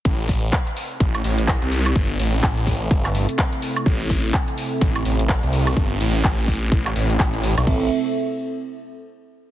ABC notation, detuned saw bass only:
X:1
M:4/4
L:1/16
Q:"Swing 16ths" 1/4=126
K:Am
V:1 name="Detuned saw bass" clef=bass
A,,,4 z4 A,,,2 A,,,3 C,,3 | G,,,2 A,,,2 A,,,4 G,,,3 z4 z | A,,,4 z4 A,,,2 A,,,3 C,,3 | G,,,2 A,,,2 A,,,4 A,,,2 A,,,2 A,,,3 B,,, |
A,,,2 z12 z2 |]